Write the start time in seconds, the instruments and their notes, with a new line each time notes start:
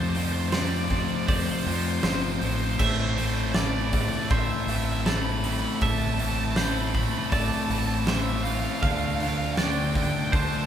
Already playing: distorted electric guitar F2 C3 F3 A3 C4 F4, fingered electric bass F2, clean electric guitar A4 D5
0.00 overdriven electric guitar C5
0.09 overdriven electric guitar C5
0.15 distorted electric guitar F2 C3 F3 A3 C4 F4, overdriven electric guitar C5, open hi-hat
0.24 overdriven electric guitar C5
0.32 overdriven electric guitar C5
0.40 overdriven electric guitar C5
0.48 overdriven electric guitar C5
0.52 distorted electric guitar F2 C3 F3 A3 C4 F4, clean electric guitar C5, overdriven electric guitar D5, snare, open hi-hat
0.61 overdriven electric guitar D5
0.69 overdriven electric guitar D5
0.77 overdriven electric guitar D5
0.84 overdriven electric guitar D5
0.90 distorted electric guitar F2 C3 F3 A3 C4 F4, overdriven electric guitar D5, kick, open hi-hat
1.00 overdriven electric guitar D5
1.08 overdriven electric guitar D5
1.15 overdriven electric guitar D5
1.23 overdriven electric guitar D5
1.27 distorted electric guitar F2 C3 F3 A3 C4 F4, fingered electric bass F2, overdriven electric guitar C5, clean electric guitar D5, kick, open hi-hat
1.36 overdriven electric guitar C5
1.43 overdriven electric guitar C5
1.51 overdriven electric guitar C5
1.59 overdriven electric guitar C5
1.65 distorted electric guitar F2 C3 F3 A3 C4 F4, fingered electric bass F2, overdriven electric guitar C5, open hi-hat
1.75 overdriven electric guitar C5
1.81 overdriven electric guitar C5
1.90 overdriven electric guitar C5
1.99 overdriven electric guitar C5
2.03 fingered electric bass G1, distorted electric guitar F2 C3 F3 A3 C4 F4, clean electric guitar C5, overdriven electric guitar C5, snare, open hi-hat
2.15 overdriven electric guitar C5
2.22 overdriven electric guitar C5
2.32 overdriven electric guitar C5
2.39 fingered electric bass A1, distorted electric guitar F2 C3 F3, overdriven electric guitar C5, open hi-hat
2.44 distorted electric guitar A3 C4 F4, overdriven electric guitar C5
2.56 overdriven electric guitar C5
2.63 overdriven electric guitar C5
2.72 overdriven electric guitar C5
2.79 fingered electric bass A1, distorted electric guitar A2 E3 A3 C4 E4, overdriven electric guitar C5, clean electric guitar E5, kick, crash
2.86 overdriven electric guitar C5
2.95 overdriven electric guitar C5
3.02 overdriven electric guitar C5
3.09 overdriven electric guitar C5
3.18 distorted electric guitar A2 E3 A3 C4 E4, overdriven electric guitar C5, open hi-hat
3.26 overdriven electric guitar C5
3.34 overdriven electric guitar C5
3.41 overdriven electric guitar C5
3.49 overdriven electric guitar C5
3.54 distorted electric guitar A2 E3 A3 C4, overdriven electric guitar D5, clean electric guitar D5, snare, open hi-hat
3.59 distorted electric guitar E4, overdriven electric guitar D5
3.69 overdriven electric guitar D5
3.77 overdriven electric guitar D5
3.85 overdriven electric guitar D5
3.93 distorted electric guitar A2 E3 A3 C4 E4, overdriven electric guitar D5, kick, open hi-hat
4.01 overdriven electric guitar D5
4.09 overdriven electric guitar D5
4.17 overdriven electric guitar D5
4.25 overdriven electric guitar D5
4.30 fingered electric bass A1, distorted electric guitar A2 E3 A3 C4, clean electric guitar C5, overdriven electric guitar E5, kick, open hi-hat
4.34 distorted electric guitar E4
4.39 overdriven electric guitar E5
4.47 overdriven electric guitar E5
4.52 overdriven electric guitar E5
4.61 overdriven electric guitar E5
4.67 fingered electric bass A1, distorted electric guitar A2 E3 A3, overdriven electric guitar E5, open hi-hat
4.71 distorted electric guitar C4 E4
4.76 overdriven electric guitar E5
4.84 overdriven electric guitar E5
4.92 overdriven electric guitar E5
5.00 overdriven electric guitar E5
5.06 distorted electric guitar A2 E3 A3 C4 E4, clean electric guitar A4, overdriven electric guitar B5, snare, open hi-hat
5.13 overdriven electric guitar B5
5.22 overdriven electric guitar B5
5.29 overdriven electric guitar B5
5.37 overdriven electric guitar B5
5.44 distorted electric guitar A2 E3 A3 C4 E4, overdriven electric guitar B5, open hi-hat
5.53 overdriven electric guitar B5
5.59 overdriven electric guitar B5
5.68 overdriven electric guitar B5
5.76 overdriven electric guitar B5
5.81 fingered electric bass A1, distorted electric guitar A2 E3 A3 C4 E4, clean electric guitar E5, overdriven electric guitar A5, kick, open hi-hat
5.90 overdriven electric guitar A5
5.98 overdriven electric guitar A5
6.05 overdriven electric guitar A5
6.14 overdriven electric guitar A5
6.19 distorted electric guitar A2 E3 A3 C4 E4, overdriven electric guitar A5, open hi-hat
6.29 overdriven electric guitar A5
6.36 overdriven electric guitar A5
6.44 overdriven electric guitar A5
6.52 overdriven electric guitar A5
6.56 distorted electric guitar A2 E3 A3 C4 E4, clean electric guitar C5, overdriven electric guitar B5, snare, open hi-hat
6.65 overdriven electric guitar B5
6.73 overdriven electric guitar B5
6.81 overdriven electric guitar B5
6.87 overdriven electric guitar B5
6.94 distorted electric guitar A2 E3 A3 C4 E4, overdriven electric guitar B5, kick, open hi-hat
7.03 overdriven electric guitar B5
7.11 overdriven electric guitar B5
7.18 overdriven electric guitar B5
7.26 overdriven electric guitar A5 B5
7.32 fingered electric bass A1, distorted electric guitar A2 E3 A3 C4 E4, clean electric guitar D5, kick, open hi-hat
7.38 overdriven electric guitar A5
7.48 overdriven electric guitar A5
7.55 overdriven electric guitar A5
7.63 overdriven electric guitar A5
7.70 fingered electric bass A1, distorted electric guitar A2 E3 A3 C4 E4, overdriven electric guitar A5, open hi-hat
7.79 overdriven electric guitar A5
7.87 overdriven electric guitar A5
7.94 overdriven electric guitar A5
8.07 distorted electric guitar A2 E3 A3 C4 E4, clean electric guitar C5, overdriven electric guitar E5, snare, open hi-hat
8.13 overdriven electric guitar E5
8.20 overdriven electric guitar E5
8.28 overdriven electric guitar E5
8.36 overdriven electric guitar E5
8.44 distorted electric guitar A2 E3 A3 C4, overdriven electric guitar F5, open hi-hat
8.48 distorted electric guitar E4, overdriven electric guitar F5
8.59 overdriven electric guitar F5
8.67 overdriven electric guitar F5
8.73 overdriven electric guitar F5
8.82 fingered electric bass D2, distorted electric guitar D3 A3 D4 F4, clean electric guitar F5, overdriven electric guitar F5, kick, open hi-hat
8.91 overdriven electric guitar F5
8.98 overdriven electric guitar F5
9.06 overdriven electric guitar F5
9.14 overdriven electric guitar F5
9.20 distorted electric guitar D3 A3 D4 F4, overdriven electric guitar F5, open hi-hat
9.29 overdriven electric guitar F5
9.37 overdriven electric guitar F5
9.46 overdriven electric guitar F5
9.52 overdriven electric guitar F5 G5
9.57 distorted electric guitar D3 A3 D4 F4, clean electric guitar D5, snare, open hi-hat
9.64 overdriven electric guitar G5
9.71 overdriven electric guitar G5
9.79 overdriven electric guitar G5
9.87 overdriven electric guitar G5
9.95 distorted electric guitar D3 A3 D4 F4, overdriven electric guitar G5, kick, open hi-hat
10.03 overdriven electric guitar G5
10.10 overdriven electric guitar G5
10.19 overdriven electric guitar G5
10.27 overdriven electric guitar G5
10.32 fingered electric bass D2, distorted electric guitar D3 A3 D4 F4, clean electric guitar C5, overdriven electric guitar A5, kick, open hi-hat
10.40 overdriven electric guitar A5
10.49 overdriven electric guitar A5
10.56 overdriven electric guitar A5